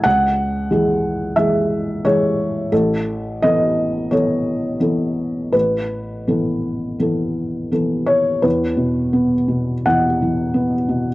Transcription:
X:1
M:4/4
L:1/8
Q:1/4=87
K:E
V:1 name="Felt piano"
f4 e2 c2 | A2 d2 c4 | B6 z c | B4 f4 |]
V:2 name="Felt piano" clef=bass
C,,2 [E,G,G]2 [E,G,G]2 [E,G,G]2 | A,,,2 [E,B,A]2 [E,B,A]2 [E,B,A]2 | A,,,2 [E,B,A]2 [E,B,A]2 [E,B,A]2 | E,, B,, B, B,, E,, E, B, B,, |]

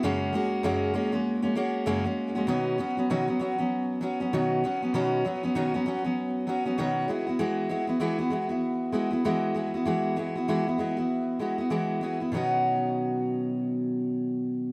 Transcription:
X:1
M:4/4
L:1/16
Q:"Swing 16ths" 1/4=98
K:B
V:1 name="Steel-string acoustic guitar"
[F,,C,G,A,CF]2 [G,A,CF]2 [F,,C,G,A,CF]2 [G,A,CF] [G,A,CF]2 [G,A,CF] [G,A,CF]2 [F,,C,G,A,CF] [G,A,CF]2 [G,A,CF] | [B,,D,F,B,CF]2 [F,B,CF] [F,B,CF] [B,,D,F,B,CF] [F,B,CF] [F,B,CF] [F,B,CF]3 [F,B,CF] [F,B,CF] [B,,D,F,B,CF]2 [F,B,CF] [F,B,CF] | [B,,D,F,B,CF]2 [F,B,CF] [F,B,CF] [B,,D,F,B,CF] [F,B,CF] [F,B,CF] [F,B,CF]3 [F,B,CF] [F,B,CF] [B,,D,F,B,CF]2 [G,B,EF] [B,EF] | [E,G,B,EF]2 [G,B,EF] [B,EF] [E,G,B,EF] [B,EF] [G,B,EF] [B,EF]3 [G,B,EF] [B,EF] [E,G,B,EF]2 [G,B,EF] [B,EF] |
[E,G,B,EF]2 [G,B,EF] [B,EF] [E,G,B,EF] [B,EF] [G,B,EF] [B,EF]3 [G,B,EF] [B,EF] [E,G,B,EF]2 [G,B,EF] [B,EF] | [B,,D,F,B,CF]16 |]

